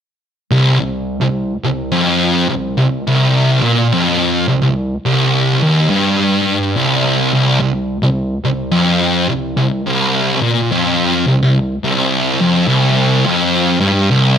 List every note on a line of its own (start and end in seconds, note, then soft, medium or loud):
0.51 0.77 C2 loud
0.79 1.16 C2 medium
1.21 1.53 C2 medium
1.64 1.91 C2 medium
1.92 2.48 F2 medium
2.49 2.76 C2 medium
2.77 3.01 C2 medium
3.07 3.60 C2 loud
3.62 3.91 A#2 loud
3.93 4.45 F2 loud
4.48 4.61 C2 medium
4.62 4.93 C2 medium
5.06 5.62 C2 loud
5.63 5.88 D#2 medium
5.90 6.73 G2 loud
6.76 7.32 C2 medium
7.34 7.58 C2 medium
7.60 7.96 C2 medium
8.03 8.34 C2 medium
8.45 8.71 C2 medium
8.72 9.28 F2 medium
9.29 9.56 C2 medium
9.57 9.81 C2 medium
9.87 10.40 C2 loud
10.42 10.71 A#2 loud
10.72 11.25 F2 loud
11.27 11.42 C2 medium
11.43 11.74 C2 medium
11.84 12.41 C2 medium
12.41 12.67 F2 loud
12.68 13.25 C2 loud
13.26 13.79 F2 loud
13.80 14.10 G2 loud
14.11 14.37 C2 loud